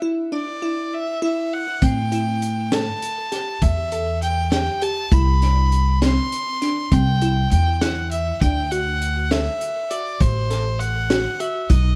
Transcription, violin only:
0.34 D5
0.94 E5
1.23 E5
1.53 F#5
1.83 G5
2.73 A5
3.62 E5
4.23 G5
4.53 G5
4.83 A5
5.13 B5
6.03 C6
6.93 G5
7.52 G5
7.82 F#5
8.11 E5
8.42 G5
8.72 F#5
9.31 E5
9.91 D5
10.21 C5
10.80 F#5
11.40 E5
11.70 D#5

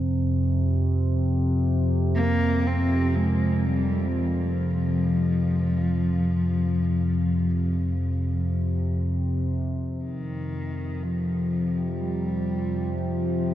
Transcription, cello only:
2.16 A#3
2.67 C4
3.16 G#3
3.67 G3
4.16 F3
10.04 D#3
11.03 F3
12.01 G3
12.99 F3

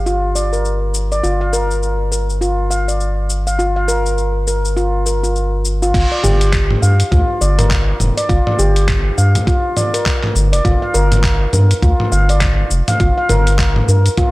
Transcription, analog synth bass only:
Already playing: G1
1.24 G1
5.94 G1
6.24 G1
6.82 G2
7.12 D2
7.41 G1
8.00 F1
8.29 G1
8.59 G1
9.18 G2
10.35 G1
10.53 F1
10.65 G1
10.94 G1
11.53 G2
11.82 D2
12.12 G1
12.71 F1
13.00 G1
13.29 G1
13.88 G2

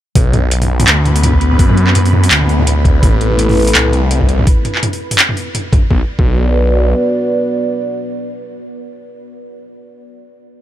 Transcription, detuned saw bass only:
0.15 B1
0.88 D2
1.59 F#2
2.31 D2
3.03 A1
3.76 C2
5.91 B1
6.19 B1

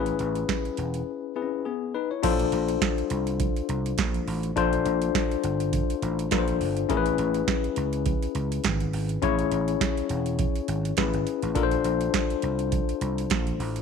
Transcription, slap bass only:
Already playing: A1
0.20 A1
0.78 E1
2.23 A#1
2.52 A#1
3.11 C2
3.69 C2
3.98 A#1
4.27 A1
4.57 A#1
4.86 A#1
5.44 G1
6.02 A1
6.32 A#1
6.61 G1
6.90 A1
7.19 A1
7.77 C#2
8.35 C#2
8.64 G#1
8.93 G#1
9.23 A1
9.51 A1
10.10 E1
10.68 G#1
10.97 A1
11.14 G#1
11.43 A1
11.55 A#1
11.85 A#1
12.43 C2
13.01 C2
13.31 A#1
13.60 A1

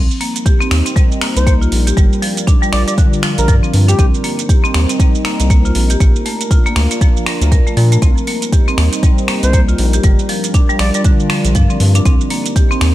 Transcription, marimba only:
0.21 A#3
0.46 G4
0.60 C4
0.86 C4
0.96 G3
1.21 A#3
1.47 A#3
1.61 F4
1.87 G4
1.97 G3
2.22 F3
2.47 D4
2.62 G3
2.87 G3
2.98 D3
3.23 F3
3.48 F3
3.63 C4
3.88 D4
3.99 C4
4.24 A#3
4.49 G4
4.64 C4
4.89 C4
5.00 G3
5.25 A#3
5.50 A#3
5.65 F4
5.90 G4
6.00 A#3
6.26 A3
6.51 F4
6.66 A#3
6.91 A#3
7.01 F3
7.26 A#4
7.52 A#4
7.67 A3
7.77 F3
7.92 A3
8.02 C4
8.28 A#3
8.53 G4
8.68 C4
8.93 C4
9.03 G3
9.29 A#3
9.54 A#3
9.68 F4
9.94 G4
10.04 G3
10.29 F3
10.54 D4
10.69 G3
10.95 G3
11.05 D3
11.30 F3
11.55 F3
11.70 C4
11.95 D4
12.05 C4
12.31 A#3
12.56 G4
12.71 C4

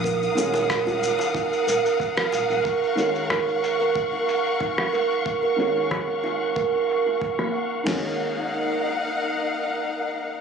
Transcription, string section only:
Already playing: A#4 F5 F#5 D#6
2.65 C#6
7.87 D#4 A#4 F5 F#5

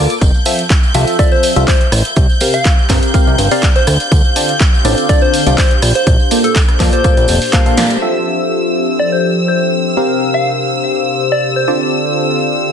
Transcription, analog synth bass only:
0.21 F1
0.95 C2
1.56 C2
1.92 A1
2.17 C2
2.90 G1
3.27 C2
3.38 G1
3.87 D2
4.12 D2
4.85 A1
5.46 C2
5.82 A#1
6.07 A#1
6.80 F2
7.17 A#1
7.29 F1
7.77 A#2

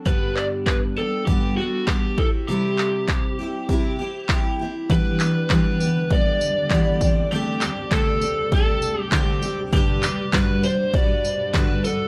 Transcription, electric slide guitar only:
0.07 B4
0.37 D5
0.67 B4
0.98 A4
1.26 G4
1.57 F#4
1.87 G4
2.18 A4
2.49 G4
4.92 B4
5.51 B4
6.13 D5
7.32 G4
7.93 A4
8.54 A4
9.01 G4
9.14 G4
9.74 G4
10.34 B4
10.65 C5
10.95 D5
11.54 B4
11.85 A4

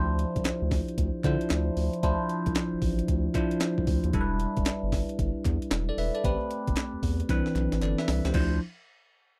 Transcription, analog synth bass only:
Already playing: D2
0.36 C2
0.45 D2
0.62 D2
0.98 D2
1.24 D3
1.51 D2
1.77 D2
2.03 D2
2.47 C2
2.73 A1
2.82 A1
3.09 D2
3.78 C2
3.88 D2
4.04 D#2
4.13 E1
4.57 E1
4.66 G1
4.83 G1
5.19 G1
5.45 E2
5.71 E1
5.98 E1
6.24 A1
6.68 G1
6.93 E2
7.03 E2
7.29 C2
7.55 B1
7.73 A1
7.82 G1
8.08 C2
8.25 C#2
8.34 D2

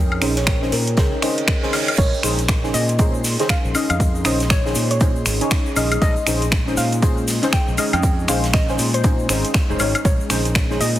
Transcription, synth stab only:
Already playing: C#4 D#4 G#4 D#5
0.21 C#4 D#4 G#4 C5
0.62 C#4 D#4 G#4 C5
0.97 C#4 D#4 G#4 C5
1.22 C#4 D#4 G#4 C5
1.63 C#4 D#4 G#4 C5
1.73 C#4 D#4 G#4 C#5
2.23 C#4 D#4 G#4 C5
2.63 C#4 D#4 G#4 C5
2.99 C#4 D#4 G#4 C5
3.39 C#4 D#4 G#4 C5
3.74 C#4 D#4 G#4 D#5
4.25 C#4 D#4 G#4 C5
4.65 C#4 D#4 G#4 C5
5.00 C#4 D#4 G#4 C5
5.41 C#4 D#4 G#4 C#5
5.76 C#4 D#4 G#4 D#5
6.26 C#4 D#4 G#4 C5
6.67 C#4 D#4 G#4 C5
7.02 C#4 D#4 G#4 C5
7.42 C#4 D#4 G#4 C5
7.78 C#4 D#4 G#4 D#5
8.28 C#4 D#4 G#4 C5
8.68 C#4 D#4 G#4 C5
9.04 C#4 D#4 G#4 C5
9.29 C#4 D#4 G#4 C5
9.69 C#4 D#4 G#4 C5
9.79 C#4 D#4 G#4 C#5
10.30 C#4 D#4 G#4 C5
10.70 C#4 D#4 G#4 C5

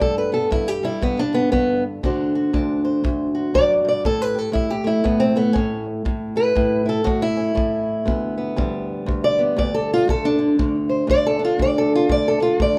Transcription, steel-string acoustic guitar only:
Already playing: G3 B3
0.00 G2 A4
0.18 B4
0.32 B3 A4
0.51 G2 E4
0.68 G4
0.83 G3 E4
1.01 G2 B3
1.19 D4
1.33 D3 B3
1.52 G2 B3
2.03 D2 D3 D4 F#4 C5
2.35 F#4
2.53 D2 D4
2.85 C5
3.04 D2
3.35 F#4
3.54 F#2 D5
3.85 G2 D5
4.05 A2 A4
4.22 B4
4.35 G4 A4
4.52 A2 E4
4.70 G4
4.84 A3 E4
5.04 A2 B3
5.20 C4
5.36 A3 B3
5.53 A2 C#4
6.05 A2
6.36 E4 B4
6.55 A2 E4
6.86 E4 A4
7.04 A2 F#4
7.22 E4
7.37 C#4
7.55 A2
8.06 D2 B3
8.38 B3
8.56 D2 G3
9.06 D2
9.24 D5
9.39 B3
9.56 D2 D5
9.74 A4
9.94 F4
10.08 D2 A4
10.25 D4
10.39 D3
10.59 D2 D3
10.89 C5
11.07 D2 D5
11.27 A4
11.39 D4
11.45 F4
11.59 D2 D5
11.78 A4
11.95 F4
12.10 D2 D5
12.28 A4
12.40 D4 F4
12.60 D2 D5

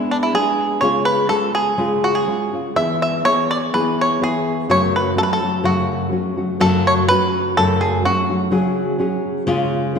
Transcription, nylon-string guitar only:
Already playing: G#3 B3 D4 G#4
0.34 G#3 B3 D4 G#4
0.81 C#3 G#3 C#4 F4 G#4
1.29 G#3 C#4 F4 G#4
1.78 C#3 G#3 C#4 F4 G#4
2.28 G#3 C#4 F4 G#4
2.53 C#4 F4 G#4
2.76 E3 B3 E4 G#4
3.25 E3 B3 E4 G#4
3.73 E3 B3 E4 G#4
4.21 E3 B3 E4 G#4
4.69 F#2 C#3 F#3 A3 C#4 F#4
5.16 F#3 A3 C#4 F#4
5.41 F#3 A3 C#4 F#4
5.63 F#2 C#3 F#3 A3 C#4 F#4
6.11 F#3 A3 C#4 F#4
6.37 F#3 A3 C#4 F#4
6.60 F#2 C#3 F#3 A3 C#4 F#4
7.10 F#3 A3 C#4 F#4
7.57 F#2 C#3 F#3 A3 C#4 F#4
8.05 F#3 A3 C#4 F#4
8.30 F#3 A3 C#4 F#4
8.51 C#3 F#3 C#4 F#4 G#4
8.99 F#3 C#4 F#4 G#4
9.47 C#3 G#3 C#4 F4 G#4
9.95 G#3 C#4

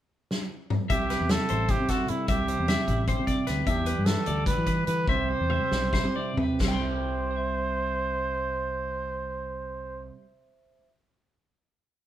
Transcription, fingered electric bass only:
0.90 C2
1.20 E2
1.51 A1
1.80 C3
2.10 C3
2.29 C2
2.59 E2
2.88 A1
3.19 C3
3.49 D2
3.67 E2
3.98 G2
4.28 D2
4.58 E3
4.88 E3
5.07 C2
5.40 E2
5.72 B1
6.04 C3
6.37 C3
6.60 C2

